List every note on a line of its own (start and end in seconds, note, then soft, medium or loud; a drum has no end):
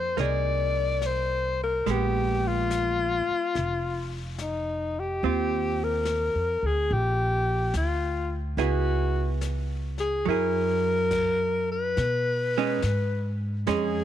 0.00 0.13 F2 medium
0.00 1.85 F3 soft
0.00 0.16 A#3 soft
0.00 0.18 D#4 soft
0.00 0.19 G#4 soft
0.00 0.22 C5 medium
0.17 1.82 C2 medium
0.17 1.86 A#3 soft
0.17 1.87 D#4 soft
0.17 1.88 G#4 soft
0.17 1.08 D5 medium
0.17 brush sweep soft
0.17 snare soft
1.02 snare soft
1.02 hi-hat pedal soft
1.06 1.62 C5 medium
1.64 1.92 A#4 medium
1.86 3.24 A#1 medium
1.86 5.22 G#3 soft
1.86 5.24 B3 soft
1.86 brush sweep soft
1.86 snare soft
1.91 2.49 G4 medium
2.48 4.24 F4 medium
2.70 snare soft
2.70 hi-hat pedal medium
3.29 muted upright bass stroke soft
3.55 5.18 F1 medium
3.55 brush sweep soft
3.55 snare soft
4.38 5.01 D#4 medium
4.38 snare soft
4.38 hi-hat pedal medium
5.00 5.85 G4 medium
5.22 6.30 D#2 medium
5.22 8.58 C4 soft
5.22 8.58 F4 soft
5.22 brush sweep soft
5.84 6.68 A#4 medium
6.05 snare soft
6.05 hi-hat pedal soft
6.35 6.60 F2 soft
6.62 6.88 D2 medium
6.62 6.95 G#4 medium
6.89 7.70 A#1 medium
6.89 7.75 G4 medium
6.89 brush sweep soft
7.74 8.54 D2 medium
7.74 8.38 F4 medium
7.74 snare soft
7.74 hi-hat pedal soft
8.57 10.22 C#2 medium
8.57 10.27 B3 soft
8.57 10.27 E4 soft
8.57 9.39 F#4 medium
8.57 10.27 G#4 medium
8.57 brush sweep soft
8.57 snare soft
9.41 snare soft
9.41 hi-hat pedal medium
9.98 10.30 G#4 medium
9.98 snare soft
10.26 11.94 F#2 medium
10.26 11.97 F#3 soft
10.26 11.99 E4 soft
10.26 11.71 A#4 medium
10.26 brush sweep soft
10.30 11.99 G#4 medium
11.11 kick medium
11.11 snare soft
11.11 hi-hat pedal soft
11.11 crash medium
11.72 13.37 B4 medium
11.97 12.80 B2 medium
11.97 brush sweep soft
11.97 snare soft
12.58 12.81 G#3 medium
12.58 12.81 C#4 medium
12.58 12.82 D#4 medium
12.82 13.65 G#2 medium
12.82 snare medium
12.82 hi-hat pedal medium
13.67 14.04 F2 medium
13.67 14.04 G#3 medium
13.67 14.04 C#4 medium
13.67 14.04 D#4 soft
13.67 14.04 G#4 loud
13.67 brush sweep soft
13.67 snare soft